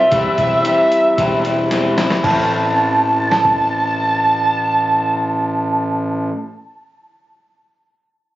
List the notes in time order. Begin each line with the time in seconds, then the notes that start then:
Already playing: F3 C4 E5
0.11 E1 E3 G3 C4 E4, kick, closed hi-hat
0.37 E1 G3 C4 E4, kick, closed hi-hat
0.63 E3 G3 C4 E4, closed hi-hat
0.92 closed hi-hat
1.17 E1 E3 G3 C4 E4, kick, closed hi-hat
1.44 G3 C4 E4, closed hi-hat
1.70 E3 G3 C4 E4, snare, closed hi-hat
1.96 G3 C4 E4, snare, closed hi-hat
2.10 snare
2.22 A1 A2 E3 A3 C4 A5, kick, crash
2.27 E4
3.32 snare
3.45 kick